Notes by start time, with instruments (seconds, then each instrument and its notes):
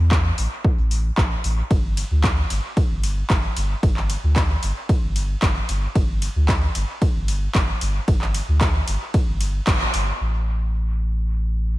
0.00 sub bass E2
0.11 kick, clap
0.38 sub bass A1, open hi-hat
0.64 kick
0.78 sub bass A1
0.91 open hi-hat
1.18 sub bass A1, kick, clap
1.44 sub bass A1, open hi-hat
1.71 sub bass G1, kick, ride
1.97 open hi-hat, ride
2.11 sub bass D2
2.24 kick, clap, ride
2.50 sub bass G1, open hi-hat, ride
2.77 kick, ride
2.90 sub bass G1
3.04 open hi-hat, ride
3.30 sub bass G1, kick, clap, ride
3.57 sub bass G1, open hi-hat, ride
3.83 sub bass G1, kick, ride
3.97 clap
4.10 open hi-hat, ride
4.23 sub bass D2
4.36 kick, clap, ride
4.63 sub bass G1, open hi-hat, ride
4.89 kick, ride
5.03 sub bass G1
5.16 open hi-hat, ride
5.42 sub bass G1, kick, clap, ride
5.69 sub bass G1, open hi-hat, ride
5.95 sub bass G1, kick, ride
6.22 open hi-hat, ride
6.36 sub bass D2
6.49 kick, clap, ride
6.75 sub bass G1, open hi-hat, ride
7.02 kick, ride
7.15 sub bass G1
7.28 open hi-hat, ride
7.55 sub bass G1, kick, clap, ride
7.81 sub bass G1, open hi-hat, ride
8.08 sub bass G1, kick, ride
8.21 clap
8.34 open hi-hat, ride
8.48 sub bass D2
8.61 kick, clap, ride
8.88 sub bass G1, open hi-hat, ride
9.14 kick, ride
9.28 sub bass G1
9.41 open hi-hat, ride
9.67 sub bass G1, kick, clap, ride
9.94 sub bass G1, open hi-hat, ride
10.20 sub bass A1